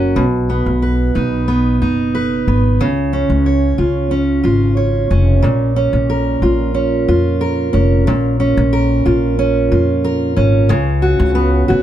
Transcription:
Already playing: F#1 A#3 C#4 F#4 A#4
0.16 B1 B2
0.50 B3
0.66 B1
0.82 B4
1.15 B1 D#4
1.48 B3
1.82 F#1 D#4
2.15 B4
2.47 G#1 B3
2.81 C#2 C#3
3.13 C#4
3.30 C#2
3.46 C#5
3.78 C#2 F4
4.11 C#4
4.44 G#1 F4
4.77 C#5
5.11 F1 C#4
5.42 A#1 A#2
5.76 C#4
5.93 A#1
6.10 A#4
6.42 A#1 F4
6.74 C#4
7.08 F2 F4
7.41 A#4
7.73 F1 C#4
8.07 A#1 A#2
8.40 C#4
8.57 A#1
8.73 A#4
9.06 A#1 F4
9.39 C#4
9.72 F2 F4
10.04 A#4
10.36 G#1 C#4
10.69 C#2 C#3
11.02 F#4
11.20 C#2
11.35 B3
11.68 C#2 F#4

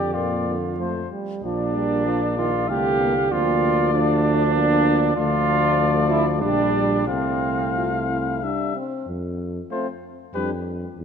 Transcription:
Already playing: F2 D3 G4 D5
0.13 A#2 A#3 F4 D5
0.47 D3
0.78 F3 A3 C5
1.11 G3
1.42 A#1 F3 A#3 D4 D5
1.75 G3
2.06 F3
2.37 D#3 F4
2.68 C2 D3 A3 G4 F5
3.00 A#3
3.31 D2 F3 A#3 F4 D5
3.94 A3 D4
4.54 F3 A#3 D5
5.15 D2 F3 A3 F4 D5
6.10 E4
6.41 A#1 G3 D4 D5
7.08 C2 A3 C4 F5
7.77 F4
8.09 E4
8.43 G3 D4 E5
8.76 C4
9.07 F2
9.71 A3 C4 F4 C5
10.34 F2 G3 D4 G4 B4
10.97 E2

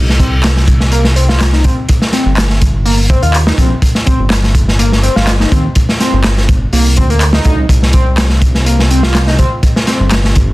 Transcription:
Already playing: C2
0.10 snare
0.19 C4, kick, closed hi-hat
0.44 snare, clap, closed hi-hat
0.57 snare
0.68 kick, closed hi-hat
0.80 snare
0.92 A#3, closed hi-hat
1.05 snare
1.16 C4, closed hi-hat
1.29 F4, snare
1.40 snare, clap, closed hi-hat
1.53 D#4, snare
1.64 C4, kick, closed hi-hat
1.89 kick, closed hi-hat
2.02 snare
2.12 C4, snare, closed hi-hat
2.26 G1
2.37 snare, clap, closed hi-hat
2.50 snare
2.62 kick, closed hi-hat
2.85 A#3, open hi-hat
3.10 C4, kick, closed hi-hat
3.23 D#2 F4, closed hi-hat
3.34 clap, closed hi-hat
3.47 D#4, snare
3.58 A#1 C4, kick, closed hi-hat
3.82 kick, closed hi-hat
3.95 snare
4.06 C4, kick, closed hi-hat
4.19 G1
4.30 snare, clap, closed hi-hat
4.44 snare
4.55 kick, closed hi-hat
4.68 snare
4.79 A#3, closed hi-hat
4.92 snare
5.03 C4, closed hi-hat
5.16 G1 F4, snare
5.27 snare, clap, closed hi-hat
5.40 D#4, snare
5.51 D#2 C4, kick, closed hi-hat
5.75 kick, closed hi-hat
5.89 snare
6.00 C4, snare, closed hi-hat
6.13 G1
6.24 snare, clap, closed hi-hat
6.38 snare
6.49 kick, closed hi-hat
6.73 C2 A#3, open hi-hat
6.97 D2 C4, kick, closed hi-hat
7.10 A#3, closed hi-hat
7.21 clap, closed hi-hat
7.33 D#4, snare
7.44 D2 D#4, kick, closed hi-hat
7.58 C2
7.69 C2, kick, closed hi-hat
7.83 snare
7.93 C4, kick, closed hi-hat
8.18 snare, clap, closed hi-hat
8.30 snare
8.42 kick, closed hi-hat
8.55 snare
8.66 A#3, closed hi-hat
8.79 snare
8.91 C4, closed hi-hat
9.03 F4, snare
9.15 snare, clap, closed hi-hat
9.27 D#4, snare
9.39 C4, kick, closed hi-hat
9.63 kick, closed hi-hat
9.76 snare
9.87 C4, snare, closed hi-hat
10.00 G1
10.11 snare, clap, closed hi-hat
10.24 snare
10.35 kick, closed hi-hat

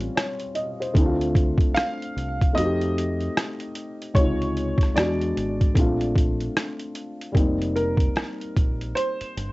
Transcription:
Already playing: G3 C4 C#4 F4
0.01 closed hi-hat
0.15 C#5, cross-stick, closed hi-hat
0.40 closed hi-hat
0.55 D#5, closed hi-hat
0.80 C5, closed hi-hat
0.93 D2 A3 C4 D4, kick, closed hi-hat
0.98 E4
1.05 F4
1.21 closed hi-hat
1.35 kick, closed hi-hat
1.58 kick, closed hi-hat
1.75 F5, cross-stick, closed hi-hat
2.02 closed hi-hat
2.16 C2, closed hi-hat
2.41 kick, closed hi-hat
2.53 F2 A3 C4 D#4 D#5
2.58 F#4, closed hi-hat
2.65 G4
2.81 closed hi-hat
2.98 closed hi-hat
3.20 closed hi-hat
3.37 cross-stick, closed hi-hat
3.60 closed hi-hat
3.75 closed hi-hat
4.02 closed hi-hat
4.14 C#2 C3 G#3 D#4 C#5, kick, closed hi-hat
4.19 F4
4.42 closed hi-hat
4.57 closed hi-hat
4.78 kick, closed hi-hat
4.83 cross-stick
4.94 E2 G#3 B3 D4 D5, cross-stick, closed hi-hat
4.99 F#4
5.21 closed hi-hat
5.37 G#1, closed hi-hat
5.61 kick, closed hi-hat
5.74 A#1 A3 C4 D4, kick, closed hi-hat
5.79 F4
6.01 closed hi-hat
6.15 kick, closed hi-hat
6.40 closed hi-hat
6.57 cross-stick, closed hi-hat
6.79 closed hi-hat
6.95 closed hi-hat
7.21 closed hi-hat
7.32 F1 G3 A#3 C4, kick
7.37 D#4, closed hi-hat
7.62 closed hi-hat
7.76 A#4, closed hi-hat
7.97 kick, closed hi-hat
8.16 cross-stick, closed hi-hat
8.41 closed hi-hat
8.56 A#1, kick, closed hi-hat
8.81 closed hi-hat
8.95 C5, closed hi-hat
9.21 muted fingered electric bass stroke, closed hi-hat
9.37 G1, closed hi-hat

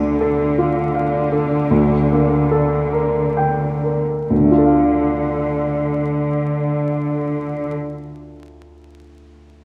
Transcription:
Already playing: D2 D3 A3
0.21 A4
0.58 F4
0.95 F5
1.32 A4
1.71 D2
2.12 A#3
2.51 A4
2.93 A#4
3.37 G5
3.84 A#4
4.29 D2 D3
4.37 D3
4.44 A3
4.51 F4
4.58 A4
4.65 F5

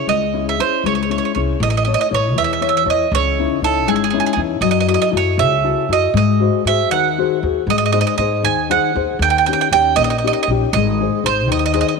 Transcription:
Already playing: C#4 E4 G#4
0.07 C#2 G#3 D#5
0.33 C#4 E4 G#4
0.49 E5
0.59 C#4 E4 G#4 C5
0.84 C#2 G#3 C#5
0.95 C#5
1.03 C#5
1.10 C#4 E4 G#4 C#5
1.18 C#5
1.25 C#5
1.35 C2 C#4 E4 G#4 C#5
1.60 A1 A3 D#5
1.70 D#5
1.77 D#5
1.85 E4 A4 C#5 D#5
1.94 D#5
2.01 D#5
2.11 A1 E4 A4 C#5
2.36 E2 E3 E5
2.44 E5
2.53 E5
2.61 E4 A4 C#5 E5
2.69 E5
2.77 E5
2.86 E2 E4 A4 C#5
2.90 D#5
3.12 C#2 C#3 C#5
3.39 C#4 D#4 E4
3.62 C#2 C#4 D#4 E4 A4
3.86 G#1 G#3 G#4
3.96 G#4
4.04 G#4
4.10 C#4 D#4 E4 G#4
4.20 G#4
4.26 G#4
4.33 E2 G#4
4.38 C#4 D#4 E4
4.61 F#2 F#3 D#5
4.71 D#5
4.80 D#5
4.88 E4 F#4 A4 D#5
4.94 D#5
5.02 D#5
5.11 F#2 E4 F#4 A4
5.17 C#5
5.38 C#2 C#3 E5
5.64 E4 F#4 A4
5.89 F#2 E4 F#4 A4 D#5
6.14 G#2 G#3 D#5
6.40 F#4 G#4 C5
6.65 G#2 F#4 G#4 C5 E5
6.91 D#2 D#3 F#5
7.18 F#4 G#4 C5
7.43 D#2 F#4 G#4 C5
7.67 G#2 G#3 D#5
7.78 D#5
7.86 D#5
7.92 D#4 G#4 C5 D#5
8.01 D#5
8.07 D#5
8.18 G#2 D#4 G#4 C5 D#5
8.43 D#2 D#3 G#5
8.70 D#4 G#4 C5 F#5
8.95 D#2 D#4 G#4 C5
9.19 D#2 D#3 G5
9.30 G5
9.38 G5
9.46 C#4 D#4 G4 G5
9.53 G5
9.61 G5
9.71 D#2 C#4 D#4 G4 G5
9.96 A#1 A#3 D#5
10.04 D#5
10.10 D#5
10.18 D#5
10.23 C#4 D#4 G4 D#5
10.33 D#5
10.43 D#5
10.47 A#1 C#4 D#4 G4
10.73 G#1 G#3 D#5
11.01 D#4 G#4 C5
11.24 G#1 D#4 G#4 C5
11.47 D#2 D#3
11.52 D#5
11.59 D#5
11.66 D#5
11.74 D#4 G#4 C5 D#5
11.81 D#5
11.89 D#5

